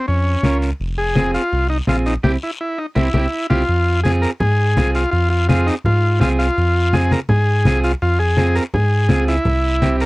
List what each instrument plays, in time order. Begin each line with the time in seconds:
0.07 analog synth bass F2, transistor combo organ C#4, long guiro
0.43 analog synth bass C#2, clean electric guitar C#4 F4 A#4, high conga, short guiro
0.62 short guiro
0.80 analog synth bass F1, long guiro
0.98 transistor combo organ G#4
1.15 clean electric guitar C4 F4 G#4, high conga, short guiro
1.34 transistor combo organ F4, short guiro
1.53 analog synth bass C2, long guiro
1.70 transistor combo organ D#4
1.87 analog synth bass A#1, clean electric guitar C4 F4 G#4, transistor combo organ F4, high conga, short guiro
2.06 transistor combo organ D#4, short guiro
2.23 analog synth bass C2, clean electric guitar C4 E4 G4, transistor combo organ G4, high conga, long guiro
2.43 transistor combo organ E4
2.61 transistor combo organ E4
2.79 transistor combo organ D#4
2.95 analog synth bass C2, clean electric guitar C4 E4 G4, transistor combo organ E4, high conga, long guiro
3.14 analog synth bass C2, clean electric guitar C4 E4 G4, high conga, long guiro
3.50 analog synth bass C2, clean electric guitar C4 E4 G4, transistor combo organ F4, high conga, long guiro
3.68 analog synth bass F2, long guiro
4.04 clean electric guitar C4 F4 G#4, transistor combo organ G#4, high conga, short guiro
4.22 transistor combo organ A#4, short guiro
4.40 analog synth bass G#2, transistor combo organ G#4, low conga, long guiro
4.77 analog synth bass C2, clean electric guitar C4 F4 G#4, high conga, low conga, short guiro
4.95 transistor combo organ F4, short guiro
5.11 analog synth bass F2, transistor combo organ F4, long guiro
5.30 transistor combo organ F4
5.49 clean electric guitar C4 F4 G#4, transistor combo organ F4, high conga, short guiro
5.67 transistor combo organ D#4, short guiro
5.84 analog synth bass G#2, transistor combo organ F4, low conga, long guiro
6.20 analog synth bass C2, clean electric guitar C4 F4 G#4, transistor combo organ F4, high conga, short guiro
6.39 transistor combo organ F4, short guiro
6.57 analog synth bass F2, long guiro
6.93 clean electric guitar C4 F4 G#4, transistor combo organ G#4, high conga, short guiro
7.11 transistor combo organ A#4, high conga, short guiro
7.29 analog synth bass G#2, transistor combo organ G#4, low conga, long guiro
7.65 analog synth bass C2, clean electric guitar C4 F4 G#4, high conga, low conga, short guiro
7.84 transistor combo organ F4, short guiro
8.02 analog synth bass F2, transistor combo organ F4, long guiro
8.19 transistor combo organ G#4
8.37 clean electric guitar C4 F4 G#4, high conga, short guiro
8.55 transistor combo organ A#4, short guiro
8.74 analog synth bass G#2, transistor combo organ G#4, low conga, long guiro
9.09 analog synth bass C#2, clean electric guitar C4 F4 G#4, high conga, short guiro
9.28 transistor combo organ E4, short guiro
9.45 analog synth bass C2, low conga, long guiro
9.82 clean electric guitar C4 E4 G4, high conga, short guiro
10.00 transistor combo organ A#4, short guiro